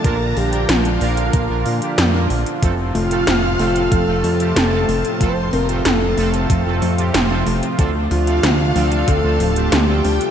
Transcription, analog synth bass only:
X:1
M:4/4
L:1/16
Q:1/4=93
K:F
V:1 name="Analog synth bass" clef=bass
B,,,2 B,,,2 B,,,2 B,,,2 B,,, B,,, B,, z F,,2 B,,, z | F,,,2 F,,,2 F,,,2 F,,,2 F,,, F,,, F,,2 F,,,2 F,,, z | F,,,2 F,,,2 F,,,2 F,,,2 F,,, F,,, F,,2 F,,,2 F,,, z | D,,2 D,,2 D,,2 D,,2 D,, D,, D,,,2 D,,2 D,, z |]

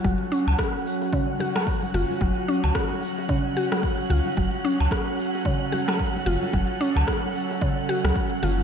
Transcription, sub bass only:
X:1
M:4/4
L:1/16
Q:"Swing 16ths" 1/4=111
K:F#m
V:1 name="Sub bass" clef=bass
F,,, z2 C,, z8 z2 F,,, z | F,,, z2 C,, z8 z2 C,, z | F,,, z2 C,, z8 z2 F,,, z | F,,, z2 C,, z6 z C,, z2 F,,, z |]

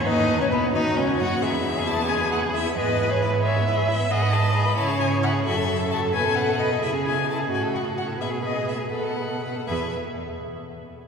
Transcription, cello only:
X:1
M:6/8
L:1/16
Q:3/8=88
K:E
V:1 name="Cello" clef=bass
D,,3 C,, B,,2 D,,2 C,,2 F,,2 | E,,12 | G,,12 | G,,6 C,6 |
F,,6 B,,6 | C,6 A,,6 | B,,6 B,,6 | E,,2 z8 z2 |]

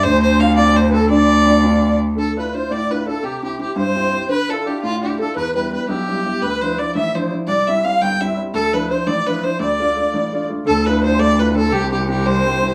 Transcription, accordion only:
X:1
M:6/8
L:1/16
Q:3/8=113
K:Ddor
V:1 name="Accordion"
c2 c2 f2 d3/2 d/2 c3/2 B/2 A2 | d8- d2 z2 | A2 B2 c2 d2 B2 A2 | G2 G2 G2 c6 |
B2 A2 G2 F2 G2 A2 | B2 B2 B2 G6 | B4 d2 e2 c2 z2 | d2 e2 f2 g2 e2 z2 |
A2 B2 c2 d2 B2 c2 | d8- d2 z2 | A2 B2 c2 d2 B2 A2 | G2 G2 G2 c6 |]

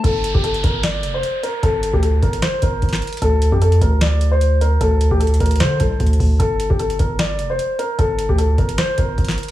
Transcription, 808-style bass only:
X:1
M:4/4
L:1/16
Q:1/4=151
K:Gm
V:1 name="808-style bass" clef=bass
G,,,3 G,,,3 G,,,4 F,,,2 z4 | G,,,3 D,,3 G,,,2 z2 G,,,2 G,,,2 z2 | D,,3 F,,3 D,,8- D,,2 | D,,3 D,,3 D,,2 D,2 C,,2 D,,2 D,,2 |
G,,,3 G,,,3 G,,,4 F,,,2 z4 | G,,,3 D,,3 G,,,2 z2 G,,,2 G,,,2 z2 |]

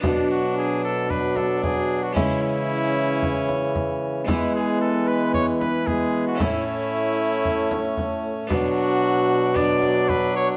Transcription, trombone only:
X:1
M:4/4
L:1/8
Q:1/4=114
K:Bdor
V:1 name="Trombone" clef=bass
F,4 F,4 | E,8 | G,6 G,2 | A,8 |
F,4 F,4 |]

